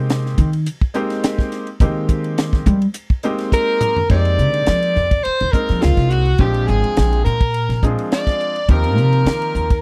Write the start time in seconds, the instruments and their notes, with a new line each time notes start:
Already playing: upright bass C3, grand piano G#3 A#3 C4 D#4 G4
0.10 snare, hi-hat pedal, ride
0.26 snare
0.38 upright bass D#3, kick, hi-hat pedal, ride
0.53 ride
0.66 hi-hat pedal, ride
0.81 kick
0.94 grand piano G#3 A#3 C4 D#4 G4, hi-hat pedal, ride
1.10 snare, ride
1.24 snare, hi-hat pedal, ride
1.39 kick, snare
1.52 snare, hi-hat pedal, ride
1.67 ride
1.80 upright bass D#3, grand piano G#3 A#3 C4 D#4 G4, kick, hi-hat pedal, ride
2.09 kick, hi-hat pedal, ride
2.24 ride
2.38 snare, hi-hat pedal, ride
2.53 kick, snare
2.66 upright bass G3, kick, hi-hat pedal, ride
2.82 ride
2.94 hi-hat pedal, ride
3.10 kick
3.23 grand piano G#3 A#3 C4 D#4 G4, hi-hat pedal, ride
3.39 snare, ride
3.52 soprano saxophone A#4, overdriven electric guitar A#4, kick, hi-hat pedal
3.81 hi-hat pedal, mid tom
3.96 floor tom
4.09 upright bass F2, grand piano G#3 A#3 C4 D#4 G4, soprano saxophone D5, overdriven electric guitar D5, kick, crash
4.25 ride
4.38 upright bass D3, hi-hat pedal
4.54 ride
4.66 upright bass F3, snare, ride
4.83 ride
4.96 upright bass F2, snare, hi-hat pedal
5.11 kick, ride
5.24 soprano saxophone C5, overdriven electric guitar C5, muted upright bass stroke, ride
5.40 upright bass D#2, ride
5.52 grand piano G#3 A#3 C4 D#4 A#4, soprano saxophone A#4, overdriven electric guitar A#4, muted upright bass stroke, kick, hi-hat pedal
5.69 upright bass F3, snare, ride
5.82 upright bass D#2, overdriven electric guitar F4, soprano saxophone F4, snare, ride
5.97 upright bass C2, kick, snare, ride
6.10 soprano saxophone F#4, overdriven electric guitar F#4, hi-hat pedal
6.25 ride
6.38 upright bass A#1, grand piano F3 G#3 C4 D4 G5, soprano saxophone G4, overdriven electric guitar G4, kick, ride
6.54 ride
6.67 upright bass G#1, soprano saxophone G#4, overdriven electric guitar G#4, hi-hat pedal
6.84 muted upright bass stroke, ride
6.97 upright bass A#1, snare, ride
7.13 ride
7.25 upright bass A#2, soprano saxophone A#4, overdriven electric guitar A#4, hi-hat pedal
7.41 kick, ride
7.54 ride
7.69 upright bass A#1, snare, ride
7.83 grand piano F3 G#3 C4 D4 G#4, kick, hi-hat pedal
7.99 ride
8.12 soprano saxophone D5, overdriven electric guitar D5, snare, ride
8.27 kick, snare, ride
8.40 hi-hat pedal
8.56 ride
8.69 upright bass D#2, grand piano F3 A#3 C4 D#4 G4, overdriven electric guitar A#4, soprano saxophone A#4, kick, ride
8.84 ride
8.97 upright bass C3, hi-hat pedal
9.13 ride
9.25 upright bass D#3, snare, ride
9.42 ride
9.55 upright bass D#2, hi-hat pedal
9.70 kick, ride